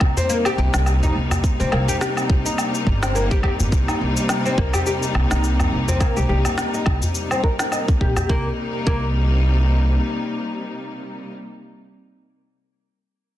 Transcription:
Already playing: C3 G3 A#3 D#4
0.00 C2, kick, djembe tone, low woodblock
0.17 C4, djembe bass, cabasa
0.30 A#3, cabasa
0.45 G4, djembe slap, cabasa, low woodblock
0.58 C2 G4, djembe tone
0.74 C2, snare, cabasa
0.86 cabasa, low woodblock
1.03 D#4, djembe bass, cabasa
1.15 C2
1.31 djembe slap, djembe bass, cabasa, low woodblock
1.44 kick, cabasa
1.60 C2 C4, djembe slap, cabasa
1.72 C2 A#3, djembe slap, low woodblock
1.88 G4, djembe tone, cabasa
2.01 G4, snare, cabasa
2.17 cabasa, low woodblock
2.30 C2, kick, djembe tone
2.45 D#4, cabasa
2.58 cabasa, low woodblock
2.75 cabasa
2.87 G1, kick
3.03 C4, snare, cabasa, low woodblock
3.15 A#3, cabasa
3.31 G4, kick, cabasa
3.43 D#2 G4, kick, low woodblock
3.60 G1, djembe tone, djembe bass, cabasa
3.72 C2, kick, cabasa
3.88 D#4, djembe slap, cabasa, low woodblock
4.01 C2
4.17 cabasa
4.29 snare, cabasa, low woodblock
4.45 C4, cabasa
4.58 C2 A#3, kick, djembe tone
4.74 G4, djembe bass, cabasa, low woodblock
4.86 G4, cabasa
5.02 djembe slap, cabasa
5.14 C2, djembe tone, low woodblock
5.31 C2 D#4, snare, cabasa
5.44 cabasa
5.60 djembe bass, cabasa, low woodblock
5.72 C2
5.88 C4, djembe slap, djembe bass, cabasa
6.00 A#3, kick, cabasa, low woodblock
6.16 C2 G4, djembe slap, cabasa
6.29 C2 G4, djembe slap
6.45 djembe tone, cabasa, low woodblock
6.58 snare, cabasa
6.74 D#4, cabasa
6.86 C2, kick, djembe tone, low woodblock
7.02 djembe bass, cabasa
7.15 cabasa
7.31 C4, cabasa, low woodblock
7.43 A#4, kick
7.59 D#4, snare, cabasa
7.72 D#5, cabasa, low woodblock
7.88 kick, cabasa
8.01 A#1 G4, kick
8.17 G4, djembe tone, djembe bass, cabasa, low woodblock
8.28 C2 C3 G3 A#3 D#4, kick
8.86 C2 A#3, kick

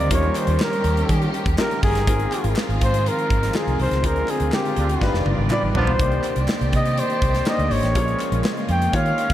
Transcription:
Already playing: D#3 G3 A#3 C4 D#4 F4 G4 A#4 D5
0.10 D#2 C#4 D#4 F4 G4 A#4 C#5, kick, closed hi-hat
0.22 closed hi-hat
0.35 C5, clap, closed hi-hat
0.47 D#2, closed hi-hat
0.60 A#4, snare, clap
0.73 closed hi-hat
0.84 D#2, closed hi-hat
0.97 closed hi-hat
1.09 D#3, kick, closed hi-hat
1.22 closed hi-hat
1.34 closed hi-hat
1.46 D#2, kick, closed hi-hat
1.58 C#4 D#4 F4 G4 A#4, snare, clap
1.71 closed hi-hat
1.83 G1 G#4, kick, open hi-hat
1.95 snare, closed hi-hat
2.07 G#1 D#3 F3 G#3 C4 D#4 F4 G#4 A#4, kick, closed hi-hat
2.19 closed hi-hat
2.32 clap, closed hi-hat
2.44 G#1, closed hi-hat
2.56 snare, clap
2.69 G#1, closed hi-hat
2.81 G#2 C5, kick, closed hi-hat
2.94 closed hi-hat
3.06 A#4, closed hi-hat
3.19 closed hi-hat
3.30 G#1, kick, closed hi-hat
3.43 snare, closed hi-hat
3.54 C4 D#4 F4 G#4 A#4, snare, clap
3.67 C2, closed hi-hat
3.79 C2 C5, open hi-hat
3.91 C#2, snare, closed hi-hat
4.03 D2 D3 C4 D4 F4 G#4 A#4 C5, kick, closed hi-hat
4.16 closed hi-hat
4.28 G#4, clap, closed hi-hat
4.40 D2, closed hi-hat
4.52 G4, snare, clap
4.65 closed hi-hat
4.76 D2 C4 D4 F4, closed hi-hat
4.89 closed hi-hat
5.01 G1 D#3 G3 B3 D4 D#4 F4 G4 B4 D5, kick, snare
5.14 F1, snare
5.26 G1, high tom
5.39 G#1
5.50 D4 D#4 F4 G4 B4 D5, clap, mid tom
5.63 A1
5.75 A#1 B3 D4 F4 C5, floor tom
5.87 B1, floor tom
5.99 C2 C3 D#3 A#3 D4 D#4 G4 C5 D5, kick, closed hi-hat
6.12 closed hi-hat
6.24 clap, closed hi-hat
6.36 C2, closed hi-hat
6.48 snare, clap
6.61 C2, closed hi-hat
6.73 C3 D#5, kick, closed hi-hat
6.85 closed hi-hat
6.97 C5, closed hi-hat
7.10 closed hi-hat
7.22 C2, kick, closed hi-hat
7.34 snare, closed hi-hat
7.46 A#3 D4 D#4 G4 C5 D#5, snare, clap
7.59 D2, closed hi-hat
7.70 G#1 C#5, open hi-hat
7.83 A1, snare, closed hi-hat
7.94 A#1 C#3 F3 G#3 A#3 C#4 F4 G#4 C#5, kick, closed hi-hat
8.08 closed hi-hat
8.20 clap, closed hi-hat
8.32 A#1, closed hi-hat
8.44 snare, clap
8.57 closed hi-hat
8.69 F2 G5, closed hi-hat
8.82 closed hi-hat
8.92 D#3 G3 A#3 C#4 D#4 F4 G4 C#5 F5, kick, closed hi-hat
9.06 closed hi-hat
9.18 closed hi-hat
9.30 D#2, kick

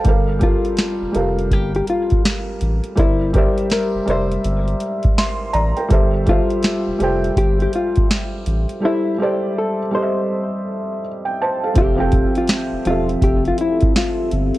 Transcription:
0.04 G1 G3 G4 A4 A#4, kick, closed hi-hat
0.09 F5
0.39 G3 G4 A4 A#4, kick, closed hi-hat
0.43 F4 F5
0.65 closed hi-hat
0.77 snare, closed hi-hat
1.02 F1
1.12 F1 G3 G4 A4 A#4, closed hi-hat
1.17 F5
1.39 closed hi-hat
1.51 G1 G4, kick, closed hi-hat
1.75 G4, closed hi-hat
1.87 F4, closed hi-hat
2.10 kick, closed hi-hat
2.25 snare, closed hi-hat
2.61 A1, closed hi-hat
2.84 closed hi-hat
2.95 G1 G3 E4 G4 A#4 C5 D5, kick, closed hi-hat
3.00 E5
3.33 G3 G4 A#4 C5 D5, kick, closed hi-hat
3.38 E5
3.58 closed hi-hat
3.70 A#4, snare, closed hi-hat
3.95 F1
4.06 F1 G3 G4 A#4 C5 D5, closed hi-hat
4.10 C5 E5
4.32 closed hi-hat
4.44 G1, closed hi-hat
4.68 closed hi-hat
4.80 closed hi-hat
5.03 kick, closed hi-hat
5.18 E5 C6, snare, closed hi-hat
5.53 A1 D5 A#5, closed hi-hat
5.77 A#4 G5, closed hi-hat
5.89 G1 G3 G4 A4 C5, kick, closed hi-hat
5.94 E5
6.26 G3 F4 G4 A4 C5, kick, closed hi-hat
6.31 E5
6.50 closed hi-hat
6.63 snare, closed hi-hat
6.87 F1
6.99 F1 G3 G4 A4 C5, closed hi-hat
7.03 G5
7.24 closed hi-hat
7.36 G1 G4, kick, closed hi-hat
7.60 G4, closed hi-hat
7.73 F4, closed hi-hat
7.96 kick, closed hi-hat
8.11 snare, closed hi-hat
8.46 A1, closed hi-hat
8.69 closed hi-hat
8.80 G3 G4 A4 C5
8.85 E4 E5
9.18 G3 G4 A4 C5
9.22 G4 D5
9.58 A4
9.91 G3 G4 A4 C5
9.96 D#5
10.02 E5
11.25 G5
11.42 C5 A5
11.63 A4 F5
11.74 F1 F3 C4 G4 A4 E5, kick, closed hi-hat
11.78 G4 E5
11.95 F3 C4 G4 A4
12.00 G5
12.12 kick, closed hi-hat
12.35 F4, closed hi-hat
12.48 snare, closed hi-hat
12.72 E1
12.85 E1 F3 C4 F4 G4 A4, closed hi-hat
12.90 E5
13.09 closed hi-hat
13.22 F1 G4, kick, closed hi-hat
13.45 F4, closed hi-hat
13.58 E4, closed hi-hat
13.81 kick, closed hi-hat
13.96 F4, snare, closed hi-hat
14.31 G1, closed hi-hat
14.54 closed hi-hat

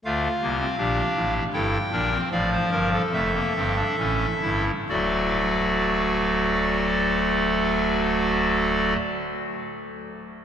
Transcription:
0.05 D2 D3 A3 F4 F5
0.42 C2 C3 A#3
0.59 C4
0.78 A#1 A#2 D4 G4
1.17 A1 A2
1.53 G1 G2 E4 A4 G5
1.92 A#1 A#2 D4 A#4
2.11 C4
2.32 A1 A2 F3 D5 F5
2.52 C5
2.71 G1 G2 A#4
2.93 A4
3.13 F1 F2 A3 E5
3.35 A#3
3.56 G1 G2 C4
3.77 D4
3.99 A1 A2 C#4
4.42 G1 G2 E4
4.89 D1 D2 F#3 A3 F#4 A4 D5

